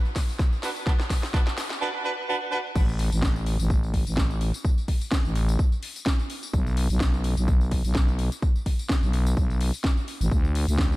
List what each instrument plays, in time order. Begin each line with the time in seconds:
0.05 tambourine
0.16 kick, snare, open hi-hat, tambourine
0.29 tambourine
0.39 kick, snare, tambourine
0.53 tambourine
0.63 horn section D4 F#4 B4, snare, open hi-hat, tambourine
0.76 tambourine
0.87 horn section D4 F#4 B4, kick, snare, tambourine
1.00 snare, tambourine
1.10 kick, snare, open hi-hat, tambourine
1.23 snare, tambourine
1.34 horn section D4 F#4 B4, kick, snare, tambourine
1.47 snare, tambourine
1.58 snare, open hi-hat, tambourine
1.70 snare, tambourine
1.81 horn section D4 F#4 B4
2.04 horn section D4 F#4 B4
2.28 horn section D4 F#4 B4
2.52 horn section D4 F#4 B4
2.76 fm bass A1, kick, crash, tambourine
2.89 tambourine
2.99 open hi-hat
3.12 fm bass A1, tambourine
3.22 kick, snare, tambourine
3.36 tambourine
3.46 open hi-hat
3.59 fm bass A1, tambourine
3.70 kick, tambourine
3.83 tambourine
3.94 kick, open hi-hat
4.07 fm bass A1, tambourine
4.17 kick, snare, tambourine
4.30 tambourine
4.41 open hi-hat
4.54 tambourine
4.65 kick, tambourine
4.78 tambourine
4.88 kick, open hi-hat
5.01 tambourine
5.11 kick, snare, tambourine
5.25 fm bass A1, tambourine
5.35 open hi-hat
5.49 tambourine
5.59 kick, tambourine
5.72 tambourine
5.83 open hi-hat
5.96 tambourine
6.06 kick, snare, tambourine
6.19 tambourine
6.30 open hi-hat
6.43 tambourine
6.54 fm bass B1, kick, tambourine
6.67 tambourine
6.77 open hi-hat
6.90 fm bass B1, tambourine
7.00 kick, snare, tambourine
7.14 tambourine
7.24 open hi-hat
7.37 fm bass B1, tambourine
7.48 kick, tambourine
7.61 tambourine
7.71 kick, open hi-hat
7.85 fm bass B1, tambourine
7.95 kick, snare, tambourine
8.08 tambourine
8.19 open hi-hat
8.32 tambourine
8.42 kick, tambourine
8.56 tambourine
8.66 kick, open hi-hat
8.79 tambourine
8.89 kick, snare, tambourine
9.03 fm bass B1, tambourine
9.13 open hi-hat
9.27 tambourine
9.37 fm bass B1, kick, tambourine
9.50 tambourine
9.61 open hi-hat
9.74 tambourine
9.84 kick, snare, tambourine
9.97 tambourine
10.08 open hi-hat
10.21 fm bass A1, tambourine
10.31 fm bass D2, kick, tambourine
10.45 tambourine
10.55 open hi-hat
10.68 fm bass D2, tambourine
10.78 kick, snare, tambourine
10.92 tambourine